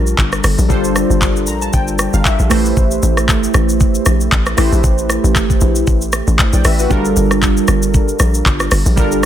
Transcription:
Already playing: A#1 G3 D4 F4 A4 A#4
0.07 shaker
0.18 G1, kick, clap, shaker
0.32 cross-stick, shaker
0.44 G1, cross-stick, open hi-hat, shaker
0.58 A#1, shaker
0.69 G1 G3 D4 F4 A4 C5, kick, shaker
0.84 shaker
0.96 cross-stick, shaker
1.10 G1, shaker
1.22 kick, clap, shaker
1.36 shaker
1.47 A#1 A#5, shaker
1.62 A5, shaker
1.73 G1 G5, kick, shaker
1.88 shaker
1.99 cross-stick, shaker
2.13 G1 F5, shaker
2.25 E5, kick, clap, shaker
2.39 A#1, shaker
2.50 A1 A3 E4 G4 B4 C5, cross-stick, open hi-hat, shaker
2.65 shaker
2.77 A1, kick, shaker
2.91 shaker
3.03 A1, shaker
3.17 cross-stick, shaker
3.29 kick, clap, shaker
3.43 shaker
3.54 A1, cross-stick, shaker
3.69 shaker
3.80 kick, shaker
3.95 shaker
4.06 A#1, cross-stick, shaker
4.20 shaker
4.32 A1, kick, clap, shaker
4.46 cross-stick, shaker
4.57 A1 A3 E4 G4 B4 C5, cross-stick, open hi-hat, shaker
4.72 A#1, shaker
4.84 A1, kick, shaker
4.98 shaker
5.10 cross-stick, shaker
5.24 A1, shaker
5.35 kick, clap, shaker
5.50 kick, shaker
5.61 A#1, shaker
5.76 shaker
5.87 A1, kick, shaker
6.01 shaker
6.13 cross-stick, shaker
6.27 A1, shaker
6.39 kick, clap, shaker
6.53 A#1 D5 G5, shaker
6.65 A1 B4 E5, cross-stick, open hi-hat, shaker
6.79 F#4 B4, shaker
6.90 G1 G3 D4 F4 A4 A#4, kick, shaker
7.05 shaker
7.16 G1, shaker
7.31 cross-stick, shaker
7.42 kick, clap, shaker
7.57 shaker
7.68 G1, cross-stick, shaker
7.83 shaker
7.94 kick, shaker
8.08 shaker
8.19 A#1, cross-stick, shaker
8.34 shaker
8.46 G1, kick, clap, shaker
8.60 cross-stick, shaker
8.71 G1, cross-stick, open hi-hat, shaker
8.86 A#1, shaker
8.96 G1 G3 D4 F4 A4 A#4, kick, shaker
9.12 shaker

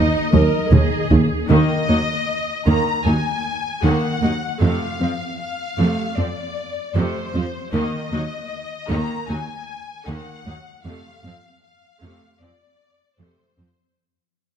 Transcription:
Already playing: D#4 D#5
0.33 D#2 F#3 A#4, taiko high
0.72 D#2 D#3 G#4, taiko mid
1.11 D#2 D#4, taiko low
1.50 D#2 D#3 A#3 D#5
1.89 D#2 F#3 A#3 D#4
2.67 D#2 D#3 A#3 A#5
3.05 D#2 F#3 A#3 D#4 G#5
3.83 D#2 D#3 A#3 F#5
4.22 D#2 F#3 A#3 D#4
4.62 F2 C3 F3 A3 F5
5.01 F2 F3 C4
5.39 F5
5.79 F2 C3 F3 A3
6.17 F2 F3 C4 D5
6.95 F2 C3 F3 A3 C5
7.35 F2 F3 C4
7.74 D#2 D#3 A#3 D#5
8.13 D#2 F#3 A#3 D#4
8.90 D#2 D#3 A#3 A#5
9.29 D#2 F#3 A#3 D#4 G#5
10.07 D#2 D#3 A#3 F#5
10.46 D#2 F#3 A#3 D#4
10.85 F2 C3 F3 A3 F5
11.24 F2 F3 C4
11.63 F5
12.02 F2 C3 F3 A3
12.41 F2 F3 C4 D5
13.19 F2 C3 F3 A3 C5
13.58 F2 F3 C4

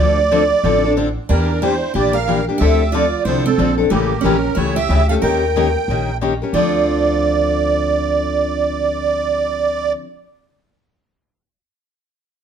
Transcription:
Already playing: D2 D5
0.00 D3 F3 C4 D4 A4
0.31 D3 F3 C4 D4 A4
0.64 A1 D3 F3 C4 D4 A4
0.85 C4 D4 A4
0.97 D3 F3 C4 D4 A4
1.29 E2 E3 A#3 D4 G4 A#4
1.62 E3 A#3 D4 E4 G4 C5
1.94 A#1 E3 A#3 D4 G4 D5
2.13 A#4 F5
2.28 E3 A#3 D4 G4
2.49 A#3 D4 G4
2.58 D2 D3 F3 C4 D4 G4 A4 E5
2.92 D3 F3 C4 D4 F4 A4 D5
3.24 C2 D3 F3 C4 E4 C5
3.28 D4 A4
3.44 C4 A4
3.58 A#1 D3 F3 C4 D4 A4
3.78 C4 D4 A4
3.90 A1 C#3 E3 A3 A#3 C#4 G4
4.21 A#1 C#3 E3 C#4 A#4
4.25 A3 C#4 G4
4.55 C#2 C#3 E3 A3 C#4 E4 G4 C#5
4.76 G4 E5
4.89 D2 C#3 E3 A3 C#4 G4
5.09 A3 C#4 G4 A4 F5
5.22 D#2 D#3 A#3 C#4 G4 A#4 G5
5.56 D#3 A#3 C#4 G4 A#4
5.88 A#1 D#3 A#3 C#4 G4 A#4
6.21 D#3 A#3 C#4 G4 A#4
6.42 C#4 G4 A#4
6.53 D2 D3 F3 C4 D4 F4 D5
6.57 A4

